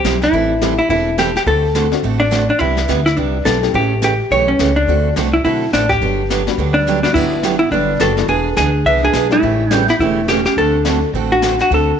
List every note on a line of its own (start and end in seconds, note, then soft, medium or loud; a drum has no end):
0.00 0.23 G4 medium
0.04 0.28 B1 medium
0.04 0.15 C3 medium
0.04 0.16 G3 medium
0.04 0.16 C4 medium
0.04 0.16 E4 medium
0.04 0.16 G4 medium
0.04 snare medium
0.04 hi-hat pedal medium
0.22 0.75 E4 medium
0.22 snare soft
0.32 0.78 A1 medium
0.32 0.52 E3 medium
0.32 0.52 G3 medium
0.32 0.53 C4 medium
0.32 0.53 E4 medium
0.32 0.53 A4 medium
0.32 brush sweep soft
0.32 kick soft
0.61 0.72 E3 medium
0.61 0.73 G3 medium
0.61 0.77 A3 medium
0.61 0.77 C4 medium
0.61 0.73 C4 medium
0.61 0.77 E4 medium
0.61 0.73 E4 medium
0.61 0.77 G4 medium
0.61 0.73 A4 medium
0.61 snare medium
0.61 hi-hat pedal medium
0.79 0.89 E4 medium
0.89 1.35 E1 medium
0.89 1.09 E3 medium
0.89 1.09 G3 medium
0.89 1.10 C4 medium
0.89 1.18 E4 medium
0.89 1.09 E4 medium
0.89 1.10 A4 medium
0.89 brush sweep medium
0.89 kick soft
1.18 1.29 E3 medium
1.18 1.29 G3 medium
1.18 1.29 C4 medium
1.18 1.29 E4 medium
1.18 1.34 G4 medium
1.18 1.30 A4 medium
1.18 snare medium
1.18 hi-hat pedal medium
1.36 1.42 G4 medium
1.36 snare soft
1.46 1.92 D2 medium
1.46 1.66 D3 medium
1.46 1.66 A3 soft
1.46 1.66 C4 medium
1.46 1.66 F#4 medium
1.46 2.04 A4 medium
1.46 1.66 A4 medium
1.46 brush sweep medium
1.46 kick soft
1.75 1.86 D3 medium
1.75 1.86 A3 medium
1.75 1.86 C4 medium
1.75 1.86 F#4 medium
1.75 1.86 A4 medium
1.75 snare medium
1.75 hi-hat pedal medium
1.92 2.03 A3 medium
1.92 2.02 C4 medium
1.92 2.02 D4 medium
1.92 2.03 F#4 medium
1.92 snare soft
2.03 2.49 A1 medium
2.03 2.23 D3 medium
2.03 2.23 A3 medium
2.03 2.23 C4 medium
2.03 2.23 F#4 medium
2.03 2.23 A4 medium
2.03 brush sweep medium
2.03 kick soft
2.20 2.47 D4 medium
2.31 2.42 D3 medium
2.31 2.42 A3 medium
2.31 2.43 C4 medium
2.31 2.42 F#4 medium
2.31 2.43 A4 medium
2.31 snare medium
2.31 hi-hat pedal medium
2.50 2.59 D4 medium
2.59 2.83 C2 medium
2.59 2.79 C3 soft
2.59 2.79 G3 soft
2.59 2.80 B3 medium
2.59 3.05 E4 medium
2.59 2.80 E4 medium
2.59 2.80 G4 medium
2.59 brush sweep soft
2.59 kick soft
2.77 snare medium
2.88 3.13 D2 medium
2.88 2.99 C3 medium
2.88 2.99 G3 medium
2.88 3.00 B3 medium
2.88 3.00 E4 medium
2.88 3.00 G4 medium
2.88 snare medium
2.88 hi-hat pedal medium
3.06 3.16 E4 medium
3.06 snare soft
3.16 3.41 C2 medium
3.16 3.36 C3 medium
3.16 3.37 G3 medium
3.16 3.37 B3 medium
3.16 3.45 D4 medium
3.16 3.37 E4 medium
3.16 3.37 G4 medium
3.16 brush sweep medium
3.16 kick soft
3.45 3.70 B1 medium
3.45 3.56 C3 medium
3.45 3.56 G3 medium
3.45 3.57 B3 medium
3.45 3.57 E4 medium
3.45 3.57 G4 medium
3.45 3.72 A4 medium
3.45 snare medium
3.45 hi-hat pedal medium
3.63 3.73 A3 medium
3.63 3.73 C#4 medium
3.63 3.73 E4 medium
3.63 3.74 G4 medium
3.63 snare soft
3.74 4.19 A1 medium
3.74 3.93 C#3 medium
3.74 3.93 E3 medium
3.74 3.93 A3 medium
3.74 3.89 A3 medium
3.74 3.93 C#4 medium
3.74 3.90 C#4 medium
3.74 3.90 E4 medium
3.74 3.94 G4 medium
3.74 3.90 G4 medium
3.74 4.03 G4 medium
3.74 brush sweep medium
3.74 kick soft
4.02 4.13 C#3 medium
4.02 4.13 E3 medium
4.02 4.13 A3 medium
4.02 4.13 C#4 medium
4.02 4.13 G4 medium
4.02 4.30 G4 medium
4.02 snare medium
4.02 hi-hat pedal medium
4.31 4.55 B1 medium
4.31 4.51 C#3 medium
4.31 4.50 E3 medium
4.31 4.51 A3 medium
4.31 4.51 C#4 medium
4.31 4.51 G4 medium
4.31 4.49 C#5 medium
4.31 brush sweep soft
4.31 kick soft
4.48 4.76 C#4 medium
4.59 4.84 C#2 medium
4.59 4.70 C#3 medium
4.59 4.70 E3 medium
4.59 4.70 A3 medium
4.59 4.71 C#4 medium
4.59 4.71 G4 medium
4.59 snare medium
4.59 hi-hat pedal medium
4.76 5.13 D4 medium
4.87 5.10 D2 medium
4.87 5.07 D3 medium
4.87 5.30 A3 medium
4.87 5.08 A3 medium
4.87 5.30 C4 medium
4.87 5.08 C4 medium
4.87 5.30 D4 medium
4.87 5.30 F#4 medium
4.87 5.08 F#4 medium
4.87 5.08 A4 medium
4.87 brush sweep soft
4.87 kick soft
5.16 5.40 C2 medium
5.16 5.27 D3 medium
5.16 5.28 A3 medium
5.16 5.28 C4 medium
5.16 5.28 F#4 medium
5.16 5.28 A4 medium
5.16 snare medium
5.16 hi-hat pedal soft
5.33 5.43 E4 medium
5.44 5.69 B1 medium
5.44 5.64 D3 medium
5.44 5.64 A3 medium
5.44 5.65 C4 medium
5.44 5.71 E4 medium
5.44 5.65 F#4 medium
5.44 5.65 A4 medium
5.44 brush sweep medium
5.44 kick soft
5.73 5.97 A1 medium
5.73 5.84 D3 medium
5.73 5.85 A3 medium
5.73 5.84 C4 medium
5.73 5.91 D4 medium
5.73 5.84 F#4 medium
5.73 5.85 A4 medium
5.73 snare medium
5.73 hi-hat pedal medium
5.89 6.78 G4 loud
5.89 kick soft
5.89 snare soft
6.01 6.47 G1 medium
6.01 6.21 D3 medium
6.01 6.21 F#3 medium
6.01 6.21 B3 medium
6.01 6.21 D4 medium
6.01 6.21 G4 medium
6.01 brush sweep soft
6.01 kick soft
6.30 6.41 D3 medium
6.30 6.41 F#3 medium
6.30 6.41 B3 medium
6.30 6.41 D4 medium
6.30 6.41 G4 medium
6.30 snare medium
6.30 hi-hat pedal medium
6.47 6.58 G3 medium
6.47 6.58 B3 medium
6.47 6.58 D4 medium
6.47 6.58 F#4 medium
6.47 snare soft
6.58 7.04 D2 medium
6.58 6.78 D3 medium
6.58 6.78 F#3 medium
6.58 6.78 B3 medium
6.58 6.78 D4 medium
6.58 6.78 G4 medium
6.58 brush sweep medium
6.58 kick soft
6.74 7.02 G3 medium
6.74 7.01 D4 medium
6.87 6.98 D3 medium
6.87 6.98 F#3 medium
6.87 6.98 B3 medium
6.87 6.98 D4 medium
6.87 6.99 G4 medium
6.87 hi-hat pedal medium
7.03 7.14 G3 medium
7.03 7.14 A3 medium
7.03 7.14 B3 medium
7.03 7.14 D4 medium
7.03 7.14 F#4 medium
7.03 snare medium
7.14 7.60 G1 medium
7.14 7.34 D3 medium
7.14 7.34 F#3 medium
7.14 7.57 B3 medium
7.14 7.35 B3 medium
7.14 7.35 D4 medium
7.14 7.58 E4 medium
7.14 7.35 G4 medium
7.14 brush sweep medium
7.14 kick medium
7.14 crash medium
7.43 7.54 D3 medium
7.43 7.54 F#3 medium
7.43 7.55 B3 medium
7.43 7.55 D4 medium
7.43 7.55 G4 medium
7.43 snare medium
7.43 hi-hat pedal medium
7.59 7.71 B3 medium
7.59 7.71 E4 medium
7.71 7.96 G1 medium
7.71 7.92 D3 medium
7.71 7.92 F#3 medium
7.71 7.98 G3 medium
7.71 7.92 B3 medium
7.71 8.01 D4 medium
7.71 7.92 D4 medium
7.71 7.92 G4 medium
7.71 brush sweep soft
7.71 kick soft
8.00 8.25 F#1 medium
8.00 8.11 D3 medium
8.00 8.11 F#3 medium
8.00 8.11 B3 medium
8.00 8.11 D4 medium
8.00 8.27 F#4 medium
8.00 8.11 G4 medium
8.00 8.28 A4 loud
8.00 snare medium
8.00 hi-hat pedal medium
8.17 8.28 G#3 medium
8.17 8.28 B3 medium
8.17 8.28 D4 medium
8.17 8.28 E4 medium
8.17 snare soft
8.28 8.51 E1 medium
8.28 8.48 E3 medium
8.28 8.48 B3 medium
8.28 8.55 D4 medium
8.28 8.48 D4 medium
8.28 8.55 G#4 medium
8.28 8.49 G#4 medium
8.28 brush sweep medium
8.28 kick soft
8.57 8.81 D2 medium
8.57 8.68 E3 medium
8.57 8.68 B3 medium
8.57 8.84 D4 medium
8.57 8.68 D4 medium
8.57 8.87 G#4 medium
8.57 8.69 G#4 medium
8.57 snare medium
8.57 hi-hat pedal medium
8.85 9.10 C2 medium
8.85 9.06 E3 medium
8.85 9.06 B3 medium
8.85 9.06 D4 medium
8.85 9.06 G#4 medium
8.85 9.02 B4 medium
8.85 9.04 E5 loud
8.85 brush sweep soft
8.85 kick soft
9.03 9.29 D4 medium
9.03 9.30 G#4 loud
9.13 9.38 B1 medium
9.13 9.26 E3 medium
9.13 9.26 B3 medium
9.13 9.26 D4 medium
9.13 9.26 G#4 medium
9.13 snare medium
9.13 hi-hat pedal medium
9.30 9.41 G3 medium
9.30 9.42 A3 medium
9.30 9.74 A3 medium
9.30 9.42 C#4 medium
9.30 9.42 E4 medium
9.30 9.73 E4 medium
9.30 snare soft
9.42 9.88 A1 medium
9.42 9.62 C#3 medium
9.42 9.62 E3 medium
9.42 9.62 A3 medium
9.42 9.62 C#4 medium
9.42 9.63 G4 medium
9.42 brush sweep medium
9.42 kick soft
9.71 9.83 C#3 medium
9.71 9.83 E3 medium
9.71 9.86 G3 medium
9.71 9.85 G3 medium
9.71 9.86 A3 medium
9.71 9.83 A3 medium
9.71 9.86 C#4 medium
9.71 9.83 C#4 medium
9.71 9.85 D4 medium
9.71 9.86 E4 medium
9.71 9.83 G4 medium
9.71 snare medium
9.71 hi-hat pedal medium
9.88 9.94 B3 medium
9.88 9.95 E4 medium
9.88 snare soft
9.99 10.45 E1 medium
9.99 10.20 C#3 medium
9.99 10.20 E3 medium
9.99 10.27 A3 medium
9.99 10.20 A3 medium
9.99 10.20 C#4 medium
9.99 10.28 E4 medium
9.99 10.20 G4 medium
9.99 brush sweep medium
9.99 kick soft
10.28 10.39 C#3 medium
10.28 10.40 E3 medium
10.28 10.40 A3 medium
10.28 10.40 C#4 medium
10.28 10.45 C#4 medium
10.28 10.45 G4 medium
10.28 10.40 G4 medium
10.28 snare medium
10.28 hi-hat pedal medium
10.45 10.57 C#4 medium
10.45 10.57 G4 medium
10.45 snare soft
10.56 11.02 D2 medium
10.56 10.76 D3 medium
10.56 10.77 A3 medium
10.56 10.77 C4 medium
10.56 11.11 D4 medium
10.56 10.77 F#4 medium
10.56 11.10 A4 loud
10.56 10.77 A4 medium
10.56 brush sweep medium
10.56 kick soft
10.84 10.97 D3 medium
10.84 11.00 F#3 medium
10.84 11.00 A3 medium
10.84 10.97 A3 medium
10.84 11.00 C4 medium
10.84 10.97 C4 medium
10.84 11.01 D4 medium
10.84 10.97 F#4 medium
10.84 10.97 A4 medium
10.84 snare medium
10.84 hi-hat pedal soft
11.13 11.59 A1 medium
11.13 11.34 D3 medium
11.13 11.34 A3 medium
11.13 11.34 C4 medium
11.13 11.34 F#4 medium
11.13 11.34 A4 medium
11.13 brush sweep medium
11.13 kick soft
11.32 11.58 D4 medium
11.32 11.58 F#4 medium
11.42 11.54 D3 medium
11.42 11.54 A3 medium
11.42 11.54 C4 medium
11.42 11.54 F#4 medium
11.42 11.54 A4 medium
11.42 snare medium
11.42 hi-hat pedal medium
11.59 11.71 D4 medium
11.59 11.71 F#4 medium
11.59 snare soft
11.70 11.93 D2 medium
11.70 11.90 D3 soft
11.70 11.91 A3 medium
11.70 11.91 C4 medium
11.70 12.00 D4 medium
11.70 11.90 F#4 medium
11.70 11.91 A4 medium
11.70 12.00 A4 medium
11.70 brush sweep soft
11.70 kick soft